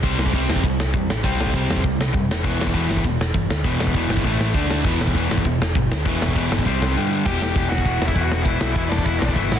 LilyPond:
<<
  \new Staff \with { instrumentName = "Lead electric guitar" } { \time 4/4 \key e \minor \tempo 4 = 200 r1 | r1 | r1 | r1 |
r1 | r1 | <g' g''>4. <fis' fis''>4~ <fis' fis''>16 <e' e''>8 <fis' fis''>8. | <e' e''>4. <d' d''>8 <e' e''>8 <d' d''>16 <d' d''>16 <e' e''>8. fis''16 | }
  \new Staff \with { instrumentName = "Distorted electric guitar" } { \clef bass \time 4/4 \key e \minor <c g c'>4 <c g c'>4 <c g>8 r8 <c g>8 r8 | <c g c'>4 <c g c'>4 <c g>8 r8 <c g>8 r8 | <e, b, e>4 <e, b, e>4 <e, b,>8 r8 <e, b,>8 r8 | <e, b, e>4 <e, b, e>4 <a, e a>4 <d a d'>4 |
<e, b, e>4 <e, b, e>4 <e, b,>8 r8 <e, b,>8 r8 | <e, b, e>4 <e, b, e>4 <c g c'>4 <g, d g>4 | r1 | r1 | }
  \new Staff \with { instrumentName = "Overdriven electric guitar" } { \clef bass \time 4/4 \key e \minor <c g c'>4 <c g c'>4 <c g>8 r8 <c g>8 r8 | <c g c'>4 <c g c'>4 <c g>8 r8 <c g>8 r8 | <e, b, e>4 <e, b, e>4 <e, b,>8 r8 <e, b,>8 r8 | <e, b, e>4 <e, b, e>4 <a, e a>4 <d a d'>4 |
<e, b, e>4 <e, b, e>4 <e, b,>8 r8 <e, b,>8 r8 | <e, b, e>4 <e, b, e>4 <c g c'>4 <g, d g>4 | <e, b, e>4 <e, b, e>4 <e, b, e>4 <e, b, e>4 | <e, b, e>4 <e, b, e>4 <e, b, e>4 <e, b, e>8 r8 | }
  \new Staff \with { instrumentName = "Picked electric bass" } { \clef bass \time 4/4 \key e \minor c,8 c,8 c,8 e,8 c,8 c,8 e,8 a,,8 | c,8 c,8 c,8 e,8 c,8 c,8 fis,8 e,,8 | e,,8 e,,8 e,,8 g,,8 e,,8 e,,8 g,,8 d,8 | e,,8 e,,8 e,,8 g,,8 a,,8 a,,8 d,8 d,8 |
e,,8 e,,8 e,,8 g,,8 e,,8 e,,8 g,,8 d,8 | e,,8 e,,8 e,,8 g,,8 c,8 c,8 r4 | e,,8 e,,8 e,,8 e,,8 e,,8 e,,8 e,8 e,,8 | e,,8 b,,8 e,,8 e,,8 e,,8 b,,8 g,,8 a,,8 | }
  \new DrumStaff \with { instrumentName = "Drums" } \drummode { \time 4/4 <cymc bd>8 sn16 bd16 <hho bd>8 sn16 bd16 <hho bd>8 sn8 <hho bd>8 sn8 | <hho bd>8 sn16 bd16 <hho bd>8 sn16 bd16 <hho bd>8 sn8 <hho bd>8 sn8 | <cymc bd>8 sn16 bd16 <hho bd>8 sn16 bd16 <hho bd>8 sn8 <hho bd>8 sn8 | <hho bd>8 sn16 bd16 <hho bd>8 sn16 bd16 <hho bd>8 sn8 <hho bd>8 sn8 |
<cymc bd>8 sn16 bd16 <hho bd>8 sn16 bd16 <hho bd>8 sn8 <hho bd>8 sn8 | <hho bd>8 sn16 bd16 <hho bd>8 sn16 bd16 <hho bd>8 sn8 r4 | <cymc bd>8 sn8 <bd cymr>8 sn16 bd16 <bd cymr>8 sn16 bd16 <bd cymr>8 sn8 | <bd cymr>8 sn8 <bd cymr>8 sn16 bd16 <bd cymr>8 sn16 bd16 <bd cymr>8 sn8 | }
>>